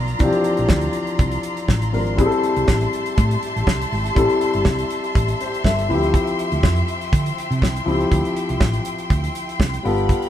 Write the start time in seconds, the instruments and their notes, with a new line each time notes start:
Already playing: fingered electric bass B1, grand piano F3 C4 D4 A#4, string section F4 D5 A#5 C6
0.08 closed hi-hat
0.18 fingered electric bass C2, grand piano E3 C4 D4 G4, kick, closed hi-hat
0.25 grand piano F3
0.33 closed hi-hat
0.44 closed hi-hat
0.57 fingered electric bass A#1, closed hi-hat
0.69 fingered electric bass D2, kick, snare
0.81 closed hi-hat
0.93 closed hi-hat
1.07 closed hi-hat
1.19 fingered electric bass C2, kick, closed hi-hat
1.32 closed hi-hat
1.43 closed hi-hat
1.57 closed hi-hat
1.68 fingered electric bass A1, kick, snare
1.82 closed hi-hat
1.93 fingered electric bass G#1, grand piano F3 C4 D4 A#4, open hi-hat
2.07 closed hi-hat
2.17 fingered electric bass A1, grand piano G3 C4 E4 G#4, string section G4 E5 A5, kick, closed hi-hat
2.26 grand piano A4
2.32 closed hi-hat
2.43 closed hi-hat
2.56 fingered electric bass C2, closed hi-hat
2.68 fingered electric bass A1, kick, snare
2.81 closed hi-hat
2.93 closed hi-hat
3.06 closed hi-hat
3.18 fingered electric bass A2, kick, closed hi-hat
3.31 closed hi-hat
3.43 closed hi-hat
3.56 fingered electric bass A1, closed hi-hat
3.67 fingered electric bass C2, kick, snare
3.82 closed hi-hat
3.92 fingered electric bass G#1, open hi-hat
4.06 closed hi-hat
4.15 fingered electric bass A1, grand piano G3 C4 E4 A4, kick, closed hi-hat
4.30 closed hi-hat
4.41 closed hi-hat
4.53 fingered electric bass G1, closed hi-hat
4.65 fingered electric bass C2, kick, snare
4.79 closed hi-hat
4.90 closed hi-hat
5.04 closed hi-hat
5.15 fingered electric bass A1, kick, closed hi-hat
5.28 closed hi-hat
5.40 grand piano G4 C5, closed hi-hat
5.54 closed hi-hat
5.64 fingered electric bass G1, grand piano A4 E5, kick, snare
5.79 closed hi-hat
5.88 fingered electric bass D2, grand piano E3 C4 E4 G4, string section F3 G5, open hi-hat
5.94 grand piano F3
6.03 closed hi-hat
6.14 kick, closed hi-hat
6.27 closed hi-hat
6.39 closed hi-hat
6.52 fingered electric bass D2, closed hi-hat
6.63 fingered electric bass F2, kick, snare
6.76 closed hi-hat
6.88 closed hi-hat
7.01 closed hi-hat
7.13 fingered electric bass D3, kick, closed hi-hat
7.26 closed hi-hat
7.38 closed hi-hat
7.51 fingered electric bass C3, closed hi-hat
7.62 fingered electric bass C2, kick, snare
7.76 closed hi-hat
7.85 fingered electric bass C#2, grand piano F3 C4 E4 G4, open hi-hat
8.01 closed hi-hat
8.12 fingered electric bass D2, kick, closed hi-hat
8.25 closed hi-hat
8.36 closed hi-hat
8.49 fingered electric bass C2, closed hi-hat
8.61 fingered electric bass A1, kick, snare
8.73 closed hi-hat
8.85 closed hi-hat
8.98 closed hi-hat
9.10 fingered electric bass D2, kick, closed hi-hat
9.24 closed hi-hat
9.35 closed hi-hat
9.49 closed hi-hat
9.60 fingered electric bass C2, kick, snare
9.74 closed hi-hat
9.83 fingered electric bass G1, grand piano G3 B3 F4 A4, string section A4 F5 B5, open hi-hat
9.98 closed hi-hat
10.09 kick, closed hi-hat
10.22 closed hi-hat